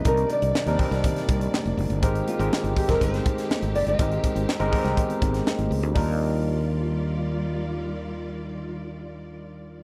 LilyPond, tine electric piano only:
\new Staff \with { instrumentName = "Tine electric piano" } { \time 4/4 \key ees \major \tempo 4 = 122 <g c' d' ees' bes'>8. r8 <g c' d' ees' bes'>16 <g c' d' ees' bes'>4~ <g c' d' ees' bes'>16 r4 r16 | <aes c' ees' g' bes'>8 r16 <aes c' ees' g' bes'>8. r16 <aes c' ees' g' a' bes'>4~ <aes c' ees' g' a' bes'>16 r4 | <aes c' ees' g' bes'>8. r8 <aes c' ees' g' bes'>16 <aes ces' c' ees' g' bes'>4~ <aes ces' c' ees' g' bes'>16 r4 r16 | <g d' ees' f' bes'>1~ |
<g d' ees' f' bes'>1 | }